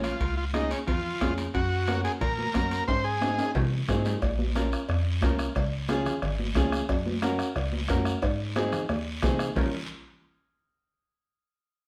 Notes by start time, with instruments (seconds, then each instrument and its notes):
Already playing: analog synth bass A#1, upright piano C#4 F4 C#5
0.03 transistor combo organ F4, bombo rim, high timbale, short guiro
0.20 analog synth bass C#2, bombo low, high timbale, long guiro
0.37 transistor combo organ F4
0.53 upright piano C#4 F4 G#4, transistor combo organ D#4, bombo rim, high conga, high timbale, short guiro
0.71 transistor combo organ C#4, high timbale, short guiro
0.87 analog synth bass F2, transistor combo organ F4, bombo low, low conga, high timbale, long guiro
1.20 analog synth bass F2, upright piano C#4 F4 G#4, bombo low, bombo rim, high conga, high timbale, low timbale, short guiro
1.37 high timbale, short guiro
1.54 analog synth bass F#2, transistor combo organ F#4, bombo low, high timbale, long guiro
1.87 upright piano C#4 F#4 A#4, bombo rim, high conga, high timbale, short guiro
2.04 transistor combo organ G#4, high timbale, short guiro
2.21 analog synth bass A#2, transistor combo organ A#4, bombo low, low conga, high timbale, long guiro
2.38 high conga
2.54 analog synth bass F#2, upright piano C#4 F#4 A#4, bombo low, bombo rim, high conga, high timbale, short guiro
2.71 high timbale, short guiro
2.88 analog synth bass G#2, transistor combo organ C5, bombo low, high timbale, long guiro
3.04 transistor combo organ G#4
3.21 upright piano C4 D#4 G#4, bombo rim, high conga, high timbale, short guiro
3.38 high timbale, short guiro
3.55 analog synth bass C3, bombo low, low conga, low timbale, long guiro
3.88 analog synth bass G#2, upright piano C4 D#4 G#4, bombo low, bombo rim, high conga, low timbale, short guiro
4.05 low timbale, short guiro
4.22 analog synth bass A#1, bombo low, bombo rim, cowbell, high conga, long guiro
4.39 high conga
4.55 upright piano C#4 F4 A#4, bombo rim, cowbell, high conga, short guiro
4.72 bombo rim, short guiro
4.88 analog synth bass F2, bombo rim, cowbell, high conga, long guiro
5.22 analog synth bass C2, upright piano C#4 F4 A#4, bombo low, bombo rim, cowbell, high conga, low timbale, short guiro
5.39 bombo rim, short guiro
5.55 analog synth bass C#2, bombo low, bombo rim, cowbell, high conga, long guiro
5.89 upright piano C#4 F4 G#4, bombo rim, cowbell, high conga, short guiro
6.06 bombo rim, low conga, short guiro
6.22 analog synth bass G#1, bombo rim, cowbell, high conga, long guiro
6.39 high conga
6.55 analog synth bass C#2, upright piano C#4 F4 G#4, bombo low, bombo rim, cowbell, high conga, low conga, low timbale, short guiro
6.72 bombo rim, short guiro
6.89 analog synth bass F#2, bombo low, bombo rim, cowbell, long guiro
7.06 high conga
7.22 upright piano C#4 F#4 A#4, bombo rim, cowbell, high conga, short guiro
7.39 bombo rim, short guiro
7.56 analog synth bass C#2, bombo rim, cowbell, high conga, long guiro
7.73 high conga
7.88 analog synth bass F#2, upright piano C#4 F#4 A#4, bombo low, bombo rim, cowbell, high conga, low timbale, short guiro
8.05 bombo rim, short guiro
8.22 analog synth bass G#2, bombo low, bombo rim, cowbell, long guiro
8.56 upright piano C4 D#4 G#4, bombo rim, cowbell, high conga, short guiro
8.72 bombo rim, low conga, short guiro
8.89 analog synth bass D#2, bombo rim, cowbell, long guiro
9.22 analog synth bass C3, upright piano C4 D#4 G#4, bombo low, bombo rim, cowbell, high conga, low conga, low timbale, short guiro
9.39 bombo rim, short guiro
9.56 analog synth bass A#1, upright piano C#4 F4 A#4, bombo low, low conga, low timbale, long guiro